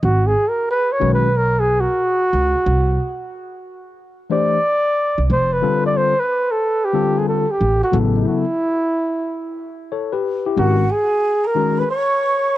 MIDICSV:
0, 0, Header, 1, 5, 480
1, 0, Start_track
1, 0, Tempo, 659341
1, 17, Time_signature, 4, 2, 24, 8
1, 9158, End_track
2, 0, Start_track
2, 0, Title_t, "Flute"
2, 0, Program_c, 0, 73
2, 7691, Note_on_c, 0, 78, 72
2, 7934, Note_on_c, 0, 80, 86
2, 7945, Note_off_c, 0, 78, 0
2, 8332, Note_on_c, 0, 82, 73
2, 8343, Note_off_c, 0, 80, 0
2, 8573, Note_on_c, 0, 83, 78
2, 8584, Note_off_c, 0, 82, 0
2, 8647, Note_off_c, 0, 83, 0
2, 8651, Note_on_c, 0, 85, 90
2, 9154, Note_off_c, 0, 85, 0
2, 9158, End_track
3, 0, Start_track
3, 0, Title_t, "Flugelhorn"
3, 0, Program_c, 1, 56
3, 29, Note_on_c, 1, 66, 84
3, 194, Note_on_c, 1, 68, 90
3, 205, Note_off_c, 1, 66, 0
3, 351, Note_on_c, 1, 70, 83
3, 362, Note_off_c, 1, 68, 0
3, 504, Note_off_c, 1, 70, 0
3, 514, Note_on_c, 1, 71, 98
3, 673, Note_on_c, 1, 73, 93
3, 684, Note_off_c, 1, 71, 0
3, 825, Note_off_c, 1, 73, 0
3, 834, Note_on_c, 1, 71, 88
3, 998, Note_on_c, 1, 70, 97
3, 1009, Note_off_c, 1, 71, 0
3, 1162, Note_on_c, 1, 68, 92
3, 1173, Note_off_c, 1, 70, 0
3, 1315, Note_on_c, 1, 66, 100
3, 1326, Note_off_c, 1, 68, 0
3, 2506, Note_off_c, 1, 66, 0
3, 3146, Note_on_c, 1, 74, 123
3, 3832, Note_off_c, 1, 74, 0
3, 3873, Note_on_c, 1, 72, 102
3, 4025, Note_on_c, 1, 71, 90
3, 4035, Note_off_c, 1, 72, 0
3, 4260, Note_off_c, 1, 71, 0
3, 4265, Note_on_c, 1, 74, 93
3, 4346, Note_on_c, 1, 72, 101
3, 4357, Note_off_c, 1, 74, 0
3, 4510, Note_on_c, 1, 71, 92
3, 4521, Note_off_c, 1, 72, 0
3, 4743, Note_on_c, 1, 69, 93
3, 4754, Note_off_c, 1, 71, 0
3, 4985, Note_on_c, 1, 67, 95
3, 4996, Note_off_c, 1, 69, 0
3, 5230, Note_on_c, 1, 68, 75
3, 5241, Note_off_c, 1, 67, 0
3, 5301, Note_off_c, 1, 68, 0
3, 5305, Note_on_c, 1, 69, 80
3, 5468, Note_on_c, 1, 67, 89
3, 5479, Note_off_c, 1, 69, 0
3, 5698, Note_off_c, 1, 67, 0
3, 5703, Note_on_c, 1, 66, 75
3, 5809, Note_off_c, 1, 66, 0
3, 5951, Note_on_c, 1, 64, 81
3, 7114, Note_off_c, 1, 64, 0
3, 7704, Note_on_c, 1, 66, 86
3, 7947, Note_on_c, 1, 68, 84
3, 7958, Note_off_c, 1, 66, 0
3, 8348, Note_on_c, 1, 70, 96
3, 8359, Note_off_c, 1, 68, 0
3, 8587, Note_on_c, 1, 71, 88
3, 8598, Note_off_c, 1, 70, 0
3, 8663, Note_off_c, 1, 71, 0
3, 8668, Note_on_c, 1, 73, 99
3, 9158, Note_off_c, 1, 73, 0
3, 9158, End_track
4, 0, Start_track
4, 0, Title_t, "Tine electric piano"
4, 0, Program_c, 2, 4
4, 727, Note_on_c, 2, 51, 65
4, 730, Note_on_c, 2, 56, 65
4, 732, Note_on_c, 2, 61, 63
4, 735, Note_on_c, 2, 66, 61
4, 739, Note_on_c, 2, 71, 74
4, 923, Note_off_c, 2, 51, 0
4, 924, Note_off_c, 2, 56, 0
4, 925, Note_off_c, 2, 61, 0
4, 927, Note_off_c, 2, 66, 0
4, 929, Note_off_c, 2, 71, 0
4, 3127, Note_on_c, 2, 52, 61
4, 3129, Note_on_c, 2, 57, 59
4, 3135, Note_on_c, 2, 62, 57
4, 3140, Note_on_c, 2, 67, 53
4, 3141, Note_on_c, 2, 72, 68
4, 3323, Note_off_c, 2, 52, 0
4, 3324, Note_off_c, 2, 57, 0
4, 3327, Note_off_c, 2, 62, 0
4, 3329, Note_off_c, 2, 67, 0
4, 3330, Note_off_c, 2, 72, 0
4, 4090, Note_on_c, 2, 50, 74
4, 4091, Note_on_c, 2, 55, 65
4, 4097, Note_on_c, 2, 60, 64
4, 4098, Note_on_c, 2, 65, 68
4, 4102, Note_on_c, 2, 69, 81
4, 4460, Note_off_c, 2, 50, 0
4, 4460, Note_off_c, 2, 55, 0
4, 4463, Note_off_c, 2, 60, 0
4, 4464, Note_off_c, 2, 65, 0
4, 4465, Note_off_c, 2, 69, 0
4, 5048, Note_on_c, 2, 50, 72
4, 5049, Note_on_c, 2, 55, 66
4, 5051, Note_on_c, 2, 60, 69
4, 5056, Note_on_c, 2, 65, 66
4, 5057, Note_on_c, 2, 69, 81
4, 5419, Note_off_c, 2, 50, 0
4, 5419, Note_off_c, 2, 55, 0
4, 5420, Note_off_c, 2, 60, 0
4, 5423, Note_off_c, 2, 65, 0
4, 5423, Note_off_c, 2, 69, 0
4, 5763, Note_on_c, 2, 49, 68
4, 5766, Note_on_c, 2, 54, 64
4, 5770, Note_on_c, 2, 59, 65
4, 5775, Note_on_c, 2, 64, 64
4, 5777, Note_on_c, 2, 69, 76
4, 6136, Note_off_c, 2, 49, 0
4, 6138, Note_off_c, 2, 54, 0
4, 6140, Note_off_c, 2, 59, 0
4, 6142, Note_off_c, 2, 64, 0
4, 6143, Note_off_c, 2, 69, 0
4, 7220, Note_on_c, 2, 73, 67
4, 7225, Note_on_c, 2, 69, 56
4, 7368, Note_off_c, 2, 73, 0
4, 7371, Note_off_c, 2, 69, 0
4, 7371, Note_on_c, 2, 71, 67
4, 7376, Note_on_c, 2, 67, 61
4, 7600, Note_off_c, 2, 71, 0
4, 7603, Note_off_c, 2, 67, 0
4, 7617, Note_on_c, 2, 67, 66
4, 7619, Note_on_c, 2, 64, 57
4, 7692, Note_on_c, 2, 51, 64
4, 7692, Note_on_c, 2, 56, 55
4, 7696, Note_on_c, 2, 61, 59
4, 7699, Note_on_c, 2, 66, 57
4, 7705, Note_on_c, 2, 70, 68
4, 7844, Note_off_c, 2, 67, 0
4, 7845, Note_off_c, 2, 64, 0
4, 7885, Note_off_c, 2, 51, 0
4, 7885, Note_off_c, 2, 56, 0
4, 7887, Note_off_c, 2, 61, 0
4, 7889, Note_off_c, 2, 66, 0
4, 7892, Note_off_c, 2, 70, 0
4, 8407, Note_on_c, 2, 51, 69
4, 8413, Note_on_c, 2, 56, 59
4, 8415, Note_on_c, 2, 61, 60
4, 8416, Note_on_c, 2, 66, 57
4, 8421, Note_on_c, 2, 70, 74
4, 8602, Note_off_c, 2, 51, 0
4, 8606, Note_off_c, 2, 56, 0
4, 8607, Note_off_c, 2, 61, 0
4, 8607, Note_off_c, 2, 66, 0
4, 8609, Note_off_c, 2, 70, 0
4, 9158, End_track
5, 0, Start_track
5, 0, Title_t, "Upright bass"
5, 0, Program_c, 3, 32
5, 20, Note_on_c, 3, 32, 98
5, 234, Note_off_c, 3, 32, 0
5, 738, Note_on_c, 3, 35, 77
5, 1346, Note_off_c, 3, 35, 0
5, 1697, Note_on_c, 3, 37, 88
5, 1838, Note_off_c, 3, 37, 0
5, 1939, Note_on_c, 3, 36, 99
5, 2153, Note_off_c, 3, 36, 0
5, 3771, Note_on_c, 3, 36, 82
5, 3846, Note_off_c, 3, 36, 0
5, 3857, Note_on_c, 3, 29, 97
5, 4072, Note_off_c, 3, 29, 0
5, 5537, Note_on_c, 3, 33, 88
5, 5679, Note_off_c, 3, 33, 0
5, 5774, Note_on_c, 3, 33, 103
5, 5991, Note_off_c, 3, 33, 0
5, 7698, Note_on_c, 3, 32, 88
5, 7913, Note_off_c, 3, 32, 0
5, 9158, End_track
0, 0, End_of_file